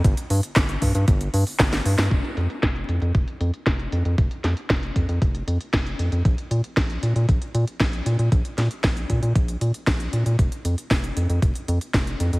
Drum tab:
HH |xxoxxxoxxxooxxo-|xxxxxxxxxxxxxxxx|xxxxxxxxxxxxxxxx|xxxxxxxxxxxxxxxx|
CP |----x-------x---|----------------|----------------|----------------|
SD |----o-------oo-o|----o-------o---|--o-o-------o---|----o-------o---|
BD |o---o-o-o---o---|o---o---o---o---|o---o-o-o---o---|o---o---o---o---|

HH |xxxxxxxxxxxxxxxx|xxxxxxxxxxxxxxxx|
CP |----------------|----------------|
SD |--o-o-------o---|----o-------o---|
BD |o---o-o-o---o---|o---o---o---o---|